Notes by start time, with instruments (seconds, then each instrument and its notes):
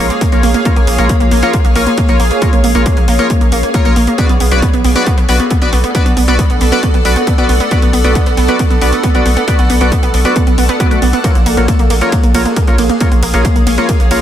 Already playing: ambient pad G#4 C#5 F5
0.10 synth arpeggio sound A#3, closed hi-hat
0.21 synth arpeggio sound A#3, kick, closed hi-hat
0.32 sub bass A#1, synth arpeggio sound A#3, analog polysynth F4 A#4 C#5, closed hi-hat
0.43 sub bass A#1, synth arpeggio sound A#3, open hi-hat
0.54 synth arpeggio sound A#3, closed hi-hat
0.65 synth arpeggio sound A#3, analog polysynth F4 A#4 C#5, kick, closed hi-hat
0.76 sub bass A#1, synth arpeggio sound A#3, closed hi-hat
0.87 sub bass A#1, synth arpeggio sound A#3, open hi-hat
0.98 sub bass A#1, synth arpeggio sound A#3, analog polysynth F4 A#4 C#5, closed hi-hat
1.09 synth arpeggio sound A#3, kick, closed hi-hat
1.20 sub bass A#1, synth arpeggio sound A#3, closed hi-hat
1.31 sub bass A#1, synth arpeggio sound A#3, open hi-hat
1.43 synth arpeggio sound A#3, analog polysynth F4 A#4 C#5, closed hi-hat
1.53 synth arpeggio sound A#3, kick, closed hi-hat
1.64 sub bass A#1, synth arpeggio sound A#3, closed hi-hat
1.75 sub bass A#1, synth arpeggio sound A#3, analog polysynth F4 A#4 C#5, open hi-hat
1.87 synth arpeggio sound A#3, closed hi-hat
1.98 synth arpeggio sound A#3, kick, closed hi-hat
2.09 sub bass A#1, synth arpeggio sound A#3, analog polysynth F4 A#4 C#5, closed hi-hat
2.20 sub bass A#1, synth arpeggio sound A#3, open hi-hat
2.31 synth arpeggio sound A#3, closed hi-hat
2.42 synth arpeggio sound A#3, analog polysynth F4 A#4 C#5, kick, closed hi-hat
2.53 sub bass A#1, synth arpeggio sound A#3, closed hi-hat
2.64 sub bass A#1, synth arpeggio sound A#3, open hi-hat
2.75 sub bass A#1, synth arpeggio sound A#3, analog polysynth F4 A#4 C#5, closed hi-hat
2.86 synth arpeggio sound A#3, kick, closed hi-hat
2.97 sub bass A#1, synth arpeggio sound A#3, closed hi-hat
3.08 sub bass A#1, synth arpeggio sound A#3, open hi-hat
3.19 synth arpeggio sound A#3, analog polysynth F4 A#4 C#5, closed hi-hat
3.30 synth arpeggio sound A#3, kick, closed hi-hat
3.41 sub bass A#1, synth arpeggio sound A#3, closed hi-hat
3.52 sub bass A#1, synth arpeggio sound A#3, open hi-hat
3.63 synth arpeggio sound A#3, closed hi-hat
3.74 synth arpeggio sound A#3, analog polysynth F4 A#4 C#5, kick, closed hi-hat
3.85 sub bass A#1, synth arpeggio sound A#3, analog polysynth F4 A#4 C#5, closed hi-hat
3.96 sub bass A#1, synth arpeggio sound A#3, open hi-hat
4.07 synth arpeggio sound A#3, closed hi-hat
4.18 synth arpeggio sound B3, analog polysynth F#4 B4 D5, ambient pad A4, kick, closed hi-hat
4.29 sub bass B1, synth arpeggio sound B3, ambient pad D5, closed hi-hat
4.40 sub bass B1, synth arpeggio sound B3, open hi-hat
4.51 sub bass B1, synth arpeggio sound B3, analog polysynth F#4 B4 D5, closed hi-hat
4.62 synth arpeggio sound B3, kick, closed hi-hat
4.73 sub bass B1, synth arpeggio sound B3, closed hi-hat
4.84 sub bass B1, synth arpeggio sound B3, open hi-hat
4.96 synth arpeggio sound B3, analog polysynth F#4 B4 D5, ambient pad F#5, closed hi-hat
5.06 synth arpeggio sound B3, kick, closed hi-hat
5.17 sub bass B1, synth arpeggio sound B3, closed hi-hat
5.28 sub bass B1, synth arpeggio sound B3, analog polysynth F#4 B4 D5, open hi-hat
5.40 synth arpeggio sound B3, closed hi-hat
5.50 synth arpeggio sound B3, kick, closed hi-hat
5.62 sub bass B1, synth arpeggio sound B3, analog polysynth F#4 B4 D5, closed hi-hat
5.73 sub bass B1, synth arpeggio sound B3, open hi-hat
5.84 synth arpeggio sound B3, closed hi-hat
5.95 synth arpeggio sound B3, analog polysynth F#4 B4 D5, kick, closed hi-hat
6.06 sub bass B1, synth arpeggio sound B3, closed hi-hat
6.17 sub bass B1, synth arpeggio sound B3, open hi-hat
6.28 sub bass B1, synth arpeggio sound B3, analog polysynth F#4 B4 D5, closed hi-hat
6.39 synth arpeggio sound B3, kick, closed hi-hat
6.50 sub bass B1, synth arpeggio sound B3, closed hi-hat
6.61 sub bass B1, synth arpeggio sound B3, open hi-hat
6.72 synth arpeggio sound B3, analog polysynth F#4 B4 D5, closed hi-hat
6.83 synth arpeggio sound B3, kick, closed hi-hat
6.94 sub bass B1, synth arpeggio sound B3, closed hi-hat
7.05 sub bass B1, synth arpeggio sound B3, analog polysynth F#4 B4 D5, open hi-hat
7.16 synth arpeggio sound B3, closed hi-hat
7.27 synth arpeggio sound B3, kick, closed hi-hat
7.38 sub bass B1, synth arpeggio sound B3, analog polysynth F#4 B4 D5, closed hi-hat
7.49 sub bass B1, synth arpeggio sound B3, open hi-hat
7.60 synth arpeggio sound B3, closed hi-hat
7.71 synth arpeggio sound B3, analog polysynth F#4 B4 D5, kick, closed hi-hat
7.82 sub bass B1, synth arpeggio sound B3, closed hi-hat
7.93 sub bass B1, synth arpeggio sound B3, open hi-hat
8.04 sub bass B1, synth arpeggio sound B3, analog polysynth F#4 B4 D5, closed hi-hat
8.15 synth arpeggio sound B3, kick, closed hi-hat
8.26 sub bass B1, synth arpeggio sound B3, closed hi-hat
8.37 sub bass B1, synth arpeggio sound B3, open hi-hat
8.48 synth arpeggio sound B3, analog polysynth F#4 B4 D5, closed hi-hat
8.59 synth arpeggio sound B3, kick, closed hi-hat
8.70 sub bass B1, synth arpeggio sound B3, closed hi-hat
8.81 sub bass B1, synth arpeggio sound B3, analog polysynth F#4 B4 D5, open hi-hat
8.92 synth arpeggio sound B3, closed hi-hat
9.03 synth arpeggio sound B3, kick, closed hi-hat
9.15 sub bass B1, synth arpeggio sound B3, analog polysynth F#4 B4 D5, closed hi-hat
9.26 sub bass B1, synth arpeggio sound B3, open hi-hat
9.37 synth arpeggio sound B3, closed hi-hat
9.48 synth arpeggio sound B3, analog polysynth F#4 B4 D5, kick, closed hi-hat
9.59 sub bass B1, synth arpeggio sound B3, closed hi-hat
9.70 sub bass B1, synth arpeggio sound B3, open hi-hat
9.81 sub bass B1, synth arpeggio sound B3, analog polysynth F#4 B4 D5, closed hi-hat
9.92 synth arpeggio sound B3, kick, closed hi-hat
10.03 sub bass B1, synth arpeggio sound B3, closed hi-hat
10.14 sub bass B1, synth arpeggio sound B3, open hi-hat
10.25 synth arpeggio sound B3, analog polysynth F#4 B4 D5, closed hi-hat
10.36 synth arpeggio sound B3, kick, closed hi-hat
10.47 sub bass B1, synth arpeggio sound B3, closed hi-hat
10.58 sub bass B1, synth arpeggio sound B3, open hi-hat
10.69 synth arpeggio sound B3, closed hi-hat
10.80 synth arpeggio sound B3, analog polysynth F#4 B4 D5, kick, closed hi-hat
10.91 sub bass B1, synth arpeggio sound A3, analog polysynth F#4 B4 D5, closed hi-hat
11.02 sub bass B1, synth arpeggio sound B3, open hi-hat
11.13 synth arpeggio sound B3, closed hi-hat
11.24 synth arpeggio sound A#3, analog polysynth F4 A#4 C#5, ambient pad G#4, kick, closed hi-hat, ride
11.35 sub bass A#1, synth arpeggio sound A#3, closed hi-hat
11.46 sub bass A#1, synth arpeggio sound A#3, ambient pad F5, open hi-hat, ride
11.57 sub bass A#1, synth arpeggio sound A#3, analog polysynth F4 A#4 C#5, ambient pad C#5, closed hi-hat
11.68 synth arpeggio sound A#3, kick, closed hi-hat, ride
11.79 sub bass A#1, synth arpeggio sound A#3, closed hi-hat
11.90 sub bass A#1, synth arpeggio sound A#3, open hi-hat, ride
12.01 synth arpeggio sound A#3, analog polysynth F4 A#4 C#5, closed hi-hat
12.12 synth arpeggio sound A#3, kick, closed hi-hat, ride
12.23 sub bass A#1, synth arpeggio sound A#3, closed hi-hat
12.34 sub bass A#1, synth arpeggio sound A#3, analog polysynth F4 A#4 C#5, open hi-hat, ride
12.45 synth arpeggio sound A#3, closed hi-hat
12.56 synth arpeggio sound A#3, kick, closed hi-hat, ride
12.67 sub bass A#1, synth arpeggio sound A#3, analog polysynth F4 A#4 C#5, closed hi-hat
12.78 sub bass A#1, synth arpeggio sound A#3, open hi-hat, ride
12.89 synth arpeggio sound A#3, closed hi-hat
13.00 synth arpeggio sound A#3, analog polysynth F4 A#4 C#5, kick, closed hi-hat, ride
13.12 sub bass A#1, synth arpeggio sound A#3, closed hi-hat
13.23 sub bass A#1, synth arpeggio sound A#3, open hi-hat, ride
13.34 sub bass A#1, synth arpeggio sound A#3, analog polysynth F4 A#4 C#5, closed hi-hat
13.45 synth arpeggio sound A#3, kick, closed hi-hat, ride
13.56 sub bass A#1, synth arpeggio sound A#3, closed hi-hat
13.67 sub bass A#1, synth arpeggio sound A#3, open hi-hat, ride
13.78 synth arpeggio sound A#3, analog polysynth F4 A#4 C#5, closed hi-hat
13.89 synth arpeggio sound A#3, kick, closed hi-hat, ride
14.00 sub bass A#1, synth arpeggio sound A#3, closed hi-hat
14.11 sub bass A#1, synth arpeggio sound A#3, analog polysynth F4 A#4 C#5, open hi-hat, ride